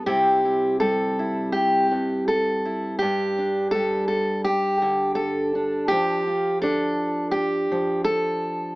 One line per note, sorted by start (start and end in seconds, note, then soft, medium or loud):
0.06 1.91 C3 medium
0.06 0.81 G3 soft
0.06 2.97 C4 soft
0.06 0.44 E4 soft
0.06 0.79 G4 medium
0.45 1.18 E4 soft
0.80 2.97 G3 medium
0.80 1.52 A4 loud
1.19 2.64 E4 soft
1.52 2.27 G4 medium
1.91 3.00 G2 medium
2.28 2.98 A4 medium
2.65 2.97 E4 soft
2.99 5.91 G2 medium
2.99 3.71 G4 loud
3.38 5.55 D4 soft
3.71 5.87 G3 medium
3.71 4.07 A4 loud
4.08 4.44 A4 medium
4.44 5.15 G4 loud
4.82 5.87 D3 medium
5.15 5.88 A4 medium
5.55 6.27 D4 soft
5.88 7.70 F3 medium
5.88 6.61 G4 loud
6.27 8.75 F4 soft
6.62 8.75 D4 medium
6.62 7.31 A4 loud
7.31 8.04 G4 medium
7.72 8.75 F3 medium
8.04 8.75 A4 loud